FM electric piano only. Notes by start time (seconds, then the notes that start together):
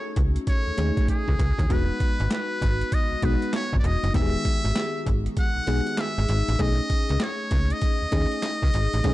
Already playing: A3 C#4 D#4 F#4 G#4 A4
0.77 A3 C#4 D#4 G#4
1.69 G#3 B3 D#4 F#4
3.23 G#3 B3 D#4 F#4
4.14 D#3 G#3 B3 G4
4.21 G#4
5.67 G#3 B3 D#4 G#4
6.59 A3 C#4 D#4 G#4
8.11 A3 C#4 D#4 G#4
9.03 A3 C#4 D#4 G#4